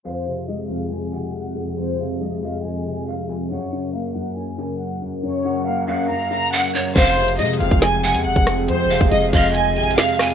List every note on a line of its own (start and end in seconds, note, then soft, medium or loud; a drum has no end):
0.05 0.68 F2 medium
0.05 3.47 F3 medium
0.05 3.47 C4 medium
0.05 3.47 G#4 medium
0.05 0.46 C5 loud
0.05 0.46 F5 loud
0.27 1.12 C3 medium
0.48 1.56 G#3 medium
0.48 0.68 D#5 medium
0.70 0.90 F2 medium
0.70 0.90 F5 medium
0.91 1.54 F2 medium
0.91 1.11 G#5 medium
1.13 1.98 C3 medium
1.13 1.34 F#5 medium
1.13 1.33 G#5 medium
1.35 1.55 F#5 medium
1.56 1.76 F2 medium
1.78 2.41 F2 medium
1.78 2.18 C5 loud
1.99 2.84 C3 medium
1.99 2.40 F5 medium
2.21 3.29 G#3 medium
2.21 2.41 D#5 medium
2.42 2.63 F2 medium
2.42 3.04 D#5 medium
2.42 2.63 F5 medium
2.64 3.28 F2 medium
2.64 2.84 G#5 medium
2.86 3.50 C3 medium
2.86 3.06 G#5 medium
3.07 3.27 F5 medium
3.07 3.28 F5 medium
3.29 3.50 F2 medium
3.29 3.49 G#5 medium
3.50 4.13 F#2 medium
3.50 6.92 F#3 medium
3.50 6.92 C#4 medium
3.50 6.92 A#4 medium
3.50 3.91 C#5 loud
3.50 3.91 F#5 loud
3.72 4.56 C#3 medium
3.93 5.01 A#3 medium
3.93 4.14 F5 medium
4.15 4.35 F#2 medium
4.15 4.35 F#5 medium
4.37 5.00 F#2 medium
4.37 4.57 G#5 medium
4.58 5.43 C#3 medium
4.58 4.78 G#5 medium
4.58 4.79 G#5 medium
4.80 5.00 F#5 medium
5.01 5.21 F#2 medium
5.23 5.86 F#2 medium
5.23 5.64 C#5 loud
5.45 6.29 C#3 medium
5.45 5.85 F#5 medium
5.66 6.74 A#3 medium
5.66 5.86 F5 medium
5.87 6.08 F#2 medium
5.87 6.48 F5 medium
5.87 6.08 F#5 medium
6.09 6.73 F#2 medium
6.09 6.29 A#5 medium
6.31 6.96 C#3 medium
6.31 6.51 A#5 medium
6.53 6.73 F#5 medium
6.74 6.96 F#2 medium
6.74 6.95 C#5 medium
6.96 7.40 F1 loud
6.96 7.59 F2 medium
6.96 10.34 F3 medium
6.96 10.34 C4 medium
6.96 10.34 G#4 medium
6.96 7.36 C5 loud
6.96 7.36 F5 loud
6.96 kick loud
6.96 closed hi-hat medium
6.96 crash loud
7.17 8.02 C3 medium
7.28 closed hi-hat medium
7.39 7.59 C3 loud
7.39 8.47 G#3 medium
7.39 7.59 D#5 medium
7.39 closed hi-hat medium
7.46 closed hi-hat medium
7.53 closed hi-hat medium
7.60 7.71 F1 loud
7.60 7.81 F2 medium
7.60 7.80 F5 medium
7.60 closed hi-hat medium
7.71 8.16 F1 loud
7.71 kick loud
7.82 8.45 F2 medium
7.82 8.02 G#5 medium
7.82 snare loud
7.82 closed hi-hat medium
8.04 8.88 C3 medium
8.04 8.24 F#5 medium
8.04 8.24 G#5 medium
8.14 8.27 F2 loud
8.14 closed hi-hat medium
8.25 8.35 F1 loud
8.25 8.45 F#5 medium
8.36 8.70 F1 loud
8.36 kick medium
8.47 8.67 F2 medium
8.47 cross-stick loud
8.47 closed hi-hat medium
8.68 8.86 F2 loud
8.68 9.32 F2 medium
8.68 9.09 C5 loud
8.68 closed hi-hat medium
8.85 9.00 F1 loud
8.90 9.75 C3 medium
8.90 9.31 F5 medium
9.01 9.11 F1 loud
9.01 kick loud
9.01 closed hi-hat medium
9.12 9.32 F1 loud
9.12 10.20 G#3 medium
9.12 9.32 D#5 medium
9.12 closed hi-hat medium
9.33 9.78 F1 loud
9.33 9.53 F2 medium
9.33 9.94 D#5 medium
9.33 9.53 F5 medium
9.33 kick loud
9.33 closed hi-hat medium
9.55 10.18 F2 medium
9.55 9.75 G#5 medium
9.55 closed hi-hat medium
9.76 9.97 G#1 loud
9.76 10.34 C3 medium
9.76 9.96 G#5 loud
9.76 closed hi-hat soft
9.84 closed hi-hat medium
9.91 closed hi-hat medium
9.98 10.18 F5 medium
9.98 snare loud
10.09 closed hi-hat medium
10.19 10.34 F2 medium
10.19 10.34 G#5 medium
10.19 cross-stick loud
10.19 open hi-hat medium
10.30 closed hi-hat medium